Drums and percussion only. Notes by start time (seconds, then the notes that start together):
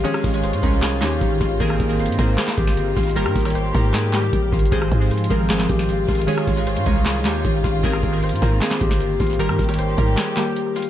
0.05 closed hi-hat
0.14 cross-stick
0.24 kick, closed hi-hat, open hi-hat
0.34 closed hi-hat
0.44 closed hi-hat
0.53 closed hi-hat
0.63 kick, closed hi-hat
0.82 snare, clap, closed hi-hat
1.02 snare, clap, closed hi-hat
1.21 kick, closed hi-hat
1.41 kick, closed hi-hat
1.60 kick, closed hi-hat
1.70 cross-stick
1.80 kick, closed hi-hat
1.99 closed hi-hat
2.06 closed hi-hat
2.12 closed hi-hat
2.19 kick, closed hi-hat
2.38 snare, clap, closed hi-hat
2.48 snare, clap
2.58 kick, closed hi-hat
2.67 snare
2.77 closed hi-hat
2.97 kick, closed hi-hat
3.03 closed hi-hat
3.10 closed hi-hat
3.16 closed hi-hat
3.26 cross-stick
3.36 kick, closed hi-hat, open hi-hat
3.40 closed hi-hat
3.45 cross-stick, closed hi-hat
3.50 closed hi-hat
3.55 closed hi-hat
3.75 kick, closed hi-hat
3.94 snare, clap, closed hi-hat
4.13 snare, clap, closed hi-hat
4.33 kick, closed hi-hat
4.52 kick, closed hi-hat
4.59 closed hi-hat
4.66 closed hi-hat
4.72 kick, closed hi-hat
4.82 cross-stick
4.91 kick, closed hi-hat
5.11 closed hi-hat
5.18 closed hi-hat
5.24 closed hi-hat
5.30 kick, closed hi-hat
5.50 snare, clap, closed hi-hat
5.59 snare, clap
5.69 kick, closed hi-hat
5.79 snare
5.89 closed hi-hat
6.08 kick, closed hi-hat
6.15 closed hi-hat
6.21 closed hi-hat
6.28 closed hi-hat
6.38 cross-stick
6.47 kick, closed hi-hat, open hi-hat
6.57 closed hi-hat
6.67 closed hi-hat
6.77 closed hi-hat
6.86 kick, closed hi-hat
7.06 snare, clap, closed hi-hat
7.25 snare, clap, closed hi-hat
7.45 kick, closed hi-hat
7.64 kick, closed hi-hat
7.84 kick, closed hi-hat
7.93 cross-stick
8.03 kick, closed hi-hat
8.23 closed hi-hat
8.29 closed hi-hat
8.36 closed hi-hat
8.42 kick, closed hi-hat
8.61 snare, clap, closed hi-hat
8.71 snare, clap
8.81 kick, closed hi-hat
8.91 snare
9.01 closed hi-hat
9.20 kick, closed hi-hat
9.27 closed hi-hat
9.33 closed hi-hat
9.39 closed hi-hat
9.49 cross-stick
9.59 kick, closed hi-hat, open hi-hat
9.64 closed hi-hat
9.69 cross-stick, closed hi-hat
9.74 closed hi-hat
9.79 closed hi-hat
9.98 kick, closed hi-hat
10.17 snare, clap, closed hi-hat
10.37 snare, clap, closed hi-hat
10.56 closed hi-hat
10.76 closed hi-hat
10.82 closed hi-hat